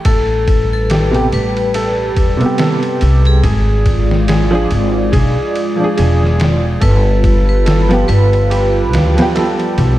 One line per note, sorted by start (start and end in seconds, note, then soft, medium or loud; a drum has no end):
0.05 1.29 A1 loud
0.05 3.40 G3 medium
0.05 0.86 A4 medium
0.05 0.65 A4 loud
0.05 3.40 B4 medium
0.05 kick loud
0.05 ride loud
0.48 kick loud
0.48 ride medium
0.73 1.27 A4 medium
0.90 1.31 G4 medium
0.90 snare loud
0.90 ride medium
1.11 1.24 C3 medium
1.11 1.24 B3 medium
1.11 ride soft
1.16 1.26 G4 loud
1.32 2.17 A1 medium
1.32 1.92 B4 medium
1.32 ride medium
1.57 ride soft
1.74 2.56 A4 medium
1.74 ride medium
2.16 2.38 E1 medium
2.16 kick loud
2.16 ride medium
2.37 3.39 C3 medium
2.37 ride soft
2.41 3.41 B3 medium
2.46 3.44 G4 medium
2.58 3.40 A4 medium
2.58 snare loud
2.58 ride medium
2.83 ride soft
3.01 3.40 C2 loud
3.01 ride medium
3.25 3.81 G#4 medium
3.25 ride soft
3.44 4.67 G#1 loud
3.44 6.78 G#3 medium
3.44 6.78 F4 medium
3.44 3.84 G#4 medium
3.44 6.78 D5 medium
3.44 kick loud
3.44 ride medium
3.86 kick medium
3.86 ride medium
4.11 snare medium
4.28 5.09 G#4 medium
4.28 snare loud
4.28 ride medium
4.51 4.62 F3 loud
4.51 4.63 D4 medium
4.55 4.64 G#4 loud
4.71 5.13 G#1 medium
4.71 ride medium
5.12 5.34 B1 loud
5.12 5.93 G#4 medium
5.12 kick loud
5.12 ride medium
5.56 ride medium
5.76 6.78 F3 medium
5.80 6.80 D4 medium
5.80 6.82 G#4 loud
5.97 6.79 E1 medium
5.97 6.37 G#4 medium
5.97 ride medium
6.23 snare soft
6.40 snare loud
6.40 ride medium
6.81 8.05 G1 loud
6.81 9.99 G3 medium
6.81 9.99 F4 medium
6.81 7.62 A4 medium
6.81 7.41 B4 loud
6.81 9.99 B4 medium
6.81 kick loud
6.81 ride loud
7.24 kick loud
7.24 ride medium
7.49 8.03 B4 medium
7.66 8.47 A4 medium
7.66 snare loud
7.66 ride medium
7.89 8.01 F3 loud
7.89 8.02 B3 medium
7.89 ride soft
7.93 8.03 G4 loud
8.08 8.94 G1 medium
8.08 8.67 B4 loud
8.08 ride medium
8.33 ride soft
8.50 8.91 G4 medium
8.50 ride medium
8.93 9.15 D2 medium
8.93 snare loud
8.93 ride medium
9.14 9.99 F3 medium
9.14 9.99 B3 medium
9.14 ride medium
9.19 9.99 G4 loud
9.19 snare loud
9.35 9.99 A4 medium
9.35 snare loud
9.35 ride medium
9.60 ride soft
9.78 9.99 B1 loud
9.78 ride medium